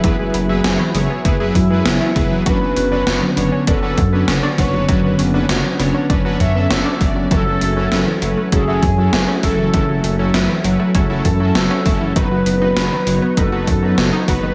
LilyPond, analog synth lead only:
\new Staff \with { instrumentName = "Analog synth lead" } { \time 4/4 \key b \dorian \tempo 4 = 99 e'4 r4. e'4. | b'2 a'4. cis''8~ | cis''4 r4. e''4. | a'2 gis'4. a'8~ |
a'4 r4. a'4. | b'2 a'4. b'8 | }